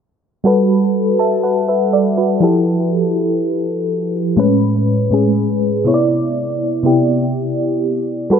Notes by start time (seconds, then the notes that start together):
0.44 G3 F#4 A4 B4
1.19 E5 A5
1.43 B4 F#5
1.68 B4 E5
1.93 A4 D5
2.17 F#4 B4
2.40 F3 E4 G4 A4
4.37 A2 G#3 C#4 B4
5.11 A2 G#3 C#4 G#4
5.84 C3 B3 E4 C#5
5.94 D5
6.83 C3 B3 E4 G4
8.30 G3 F#4 A4 B4